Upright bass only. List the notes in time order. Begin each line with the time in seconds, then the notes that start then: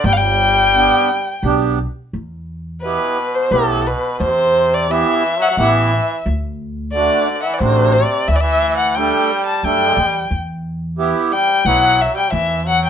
0.04 G1
1.43 B1
2.13 E2
3.51 B1
4.20 E2
5.57 A1
6.26 D2
7.60 A1
8.28 D2
9.63 F#2
9.97 E2
10.31 E2
11.65 B1
12.32 E2